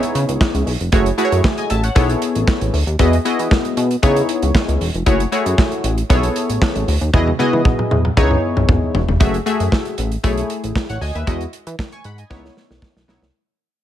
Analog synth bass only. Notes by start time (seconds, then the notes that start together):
0.15 C#3
0.29 C#2
0.54 C#2
0.66 B1
0.80 F1
0.93 F#1
1.32 F#2
1.71 A1
1.96 B1
2.36 A1
2.62 A1
2.73 D2
2.87 D#2
2.99 E2
3.39 E3
3.77 B2
4.03 C#3
4.42 C#2
4.68 C#2
4.81 E1
4.94 F1
5.07 F#1
5.46 F#2
5.84 A1
6.10 B1
6.50 A1
6.76 A1
6.88 D2
7.01 D#2
7.14 E2
7.53 E3
7.91 E2
8.17 C#2
8.57 B1
8.69 G#1
8.94 E1
9.08 F1
9.21 F#1
9.60 F#2
9.98 A1
10.24 B1
10.63 A1
10.90 A1
11.01 D2
11.15 D#2
11.27 E2
11.67 E3
12.05 G#2
12.31 C#2
12.70 B1
12.96 B1
13.08 B1
13.22 C2